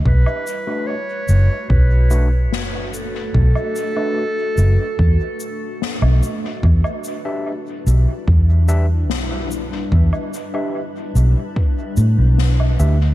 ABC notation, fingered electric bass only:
X:1
M:4/4
L:1/16
Q:1/4=73
K:Bm
V:1 name="Fingered electric bass" clef=bass
B,,, z4 z F,,, z B,,,4 F,,,4 | B,,, z4 z F,,, z E,, z4 B,,, z2 | E,, z4 z B,,, z E,,4 B,,,4 | E,, z4 z B,,, z3 A,, B,,,3 D,,2 |]